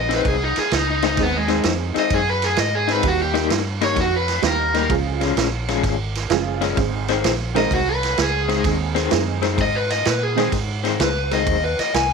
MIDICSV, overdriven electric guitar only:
0, 0, Header, 1, 2, 480
1, 0, Start_track
1, 0, Key_signature, -4, "major"
1, 0, Tempo, 465477
1, 1223, Time_signature, 4, 2, 24, 8
1, 6986, Tempo, 469851
1, 12459, End_track
2, 0, Start_track
2, 0, Title_t, "Overdriven electric guitar"
2, 0, Program_c, 0, 29
2, 0, Note_on_c, 0, 75, 76
2, 119, Note_off_c, 0, 75, 0
2, 146, Note_on_c, 0, 71, 94
2, 287, Note_off_c, 0, 71, 0
2, 287, Note_on_c, 0, 68, 84
2, 431, Note_off_c, 0, 68, 0
2, 450, Note_on_c, 0, 63, 89
2, 593, Note_off_c, 0, 63, 0
2, 608, Note_on_c, 0, 68, 89
2, 751, Note_off_c, 0, 68, 0
2, 761, Note_on_c, 0, 63, 88
2, 908, Note_off_c, 0, 63, 0
2, 931, Note_on_c, 0, 63, 90
2, 1072, Note_off_c, 0, 63, 0
2, 1092, Note_on_c, 0, 63, 84
2, 1233, Note_off_c, 0, 63, 0
2, 1263, Note_on_c, 0, 59, 104
2, 1398, Note_off_c, 0, 59, 0
2, 1412, Note_on_c, 0, 56, 104
2, 1656, Note_off_c, 0, 56, 0
2, 2055, Note_on_c, 0, 75, 101
2, 2194, Note_off_c, 0, 75, 0
2, 2210, Note_on_c, 0, 68, 89
2, 2351, Note_off_c, 0, 68, 0
2, 2367, Note_on_c, 0, 71, 88
2, 2509, Note_off_c, 0, 71, 0
2, 2522, Note_on_c, 0, 68, 88
2, 2666, Note_off_c, 0, 68, 0
2, 2677, Note_on_c, 0, 75, 90
2, 2824, Note_off_c, 0, 75, 0
2, 2836, Note_on_c, 0, 68, 95
2, 2983, Note_off_c, 0, 68, 0
2, 3013, Note_on_c, 0, 71, 87
2, 3152, Note_off_c, 0, 71, 0
2, 3173, Note_on_c, 0, 66, 91
2, 3312, Note_off_c, 0, 66, 0
2, 3323, Note_on_c, 0, 67, 92
2, 3570, Note_off_c, 0, 67, 0
2, 3961, Note_on_c, 0, 73, 93
2, 4105, Note_off_c, 0, 73, 0
2, 4125, Note_on_c, 0, 66, 88
2, 4267, Note_off_c, 0, 66, 0
2, 4293, Note_on_c, 0, 71, 101
2, 4587, Note_off_c, 0, 71, 0
2, 4605, Note_on_c, 0, 70, 100
2, 5058, Note_off_c, 0, 70, 0
2, 7809, Note_on_c, 0, 75, 99
2, 7950, Note_off_c, 0, 75, 0
2, 7968, Note_on_c, 0, 66, 100
2, 8109, Note_off_c, 0, 66, 0
2, 8124, Note_on_c, 0, 71, 109
2, 8422, Note_off_c, 0, 71, 0
2, 8457, Note_on_c, 0, 68, 105
2, 8903, Note_off_c, 0, 68, 0
2, 9888, Note_on_c, 0, 75, 108
2, 10028, Note_off_c, 0, 75, 0
2, 10036, Note_on_c, 0, 71, 101
2, 10182, Note_off_c, 0, 71, 0
2, 10183, Note_on_c, 0, 75, 98
2, 10335, Note_off_c, 0, 75, 0
2, 10347, Note_on_c, 0, 71, 91
2, 10518, Note_off_c, 0, 71, 0
2, 10518, Note_on_c, 0, 68, 100
2, 10768, Note_off_c, 0, 68, 0
2, 11312, Note_on_c, 0, 71, 99
2, 11617, Note_off_c, 0, 71, 0
2, 11641, Note_on_c, 0, 75, 67
2, 11942, Note_off_c, 0, 75, 0
2, 11958, Note_on_c, 0, 71, 67
2, 12106, Note_off_c, 0, 71, 0
2, 12113, Note_on_c, 0, 75, 79
2, 12264, Note_off_c, 0, 75, 0
2, 12277, Note_on_c, 0, 80, 81
2, 12459, Note_off_c, 0, 80, 0
2, 12459, End_track
0, 0, End_of_file